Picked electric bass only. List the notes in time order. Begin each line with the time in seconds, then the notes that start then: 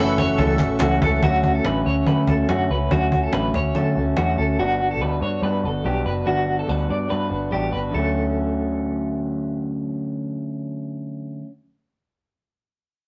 Already playing: F#1
0.39 C#2
0.60 A1
0.81 C#2
1.02 C#2
1.23 D2
1.65 A1
1.85 D2
2.06 D3
2.27 D2
2.49 F#2
2.70 C#2
2.91 D2
3.33 A1
3.54 D2
3.75 D3
3.96 D2
4.17 E2
4.38 D2
4.59 G1
5.01 D2
5.21 G2
5.42 G2
5.64 G1
5.85 B1
6.06 F#1
6.27 G1
6.69 D2
6.90 G2
7.11 G2
7.31 G1
7.53 A1
7.74 G1
7.94 D2